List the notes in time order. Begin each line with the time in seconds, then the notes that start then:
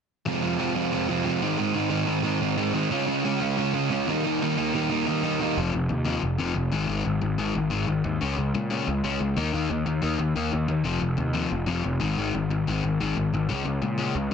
0.26 F2 C3 F3 G#3 C4 F4
0.41 F2 C3 F3 G#3 C4 F4
0.58 F2 C3 F3 G#3 C4 F4
0.75 F2 C3 F3 G#3 C4 F4
0.91 F2 C3 F3 G#3 C4 F4
1.09 F2 C3 F3 G#3 C4 F4
1.24 F2 C3 F3 G#3 C4 F4
1.41 G#2 D#3 G#3 C4 D#4
1.57 G#2 D#3 G#3 C4 D#4
1.73 G#2 D#3 G#3 C4 D#4
1.90 G#2 D#3 G#3 C4 D#4
2.05 G#2 D#3 G#3 C4 D#4
2.23 G#2 D#3 G#3 C4 D#4
2.40 G#2 D#3 G#3 C4 D#4
2.57 G#2 D#3 G#3 C4 D#4
2.73 G#2 D#3 G#3 C4 D#4
2.90 C#3 G#3 C#4 F4
3.06 C#3 G#3 C#4 F4
3.24 C#3 G#3 C#4 F4
3.41 C#3 G#3 C#4 F4
3.57 C#3 G#3 C#4 F4
3.73 C#3 G#3 C#4 F4
3.89 C#3 G#3 C#4 F4
4.07 D#3 G3 A#3 D#4
4.25 D#3 G3 A#3 D#4
4.41 D#3 G3 A#3 D#4
4.58 D#3 G3 A#3 D#4
4.73 D#3 G3 A#3 D#4
4.89 D#3 G3 A#3 D#4
5.06 D#3 G3 A#3 D#4
5.23 D#3 G3 A#3 D#4
5.40 D#3 G3 A#3 D#4
5.56 F1 F2 C3 F3
5.73 F1 F2 C3
5.89 D#2 F2 C3
6.05 F2 C3 F3
6.23 F1 F2 C3
6.39 F1 F2 C3 F3
6.55 F1 F2 C3
6.72 G#1 G#2 D#3 G#3
6.87 G#1 G#2 D#3 G#3
7.05 G#1 G#2 D#3
7.22 G#1 G#2 D#3
7.38 G#1 G#2 D#3 G#3
7.55 G#1 G#2 D#3
7.70 G#1 G#2 D#3 G#3
7.87 G#1 G#2 D#3
8.04 D#2 G#2 D#3
8.21 C#2 C#3 G#3 C#4
8.37 C#2 C#3 G#3
8.55 A#2 C#3 G#3
8.70 C#3 G#3 C#4
8.87 C#2 C#3 G#3
9.04 C#2 C#3 G#3 C#4
9.20 C#2 C#3 G#3
9.36 D#2 D#3 A#3 D#4
9.53 D#2 D#3 A#3 D#4
9.70 D#2 D#3 A#3
9.86 D#2 D#3 A#3
10.02 D#2 D#3 A#3 D#4
10.19 D#2 D#3 A#3
10.36 D#2 D#3 A#3 D#4
10.52 D#2 D#3 A#3
10.68 D#2 D#3 A#3
10.84 F1 F2 C3 F3
11.01 F1 F2 C3
11.17 D#2 F2 C3
11.33 F2 C3 F3
11.51 F1 F2 C3
11.66 F1 F2 C3 F3
11.84 F1 F2 C3
12.00 G#1 G#2 D#3 G#3
12.17 G#1 G#2 D#3 G#3
12.34 G#1 G#2 D#3
12.50 G#1 G#2 D#3
12.67 G#1 G#2 D#3 G#3
12.83 G#1 G#2 D#3
13.00 G#1 G#2 D#3 G#3
13.16 G#1 G#2 D#3
13.33 G#1 G#2 D#3
13.49 C#2 C#3 G#3 C#4
13.65 C#2 C#3 G#3
13.82 A#2 C#3 G#3
13.98 C#3 G#3 C#4
14.15 C#2 C#3 G#3